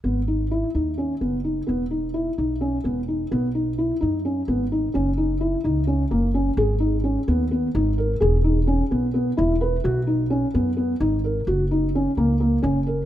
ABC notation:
X:1
M:7/8
L:1/8
Q:1/4=129
K:G#m
V:1 name="Felt piano"
B, D E D C B, D | B, D E D C B, D | B, D E D C B, D | C D E D C A, C |
G D C B, B, D A | G D C B, B, E B | F D C B, B, D A | F D C A, A, C A |]
V:2 name="Upright bass" clef=bass
G,,,3 D,,2 F,,,2 | E,,,3 B,,,2 E,,,2 | B,,,3 F,,2 G,,,2 | F,,,3 C,,2 F,,,2 |
G,,,3 D,,2 G,,,2 | E,,,3 B,,,2 E,,,2 | B,,,3 F,,2 G,,,2 | F,,,3 C,,2 F,,,2 |]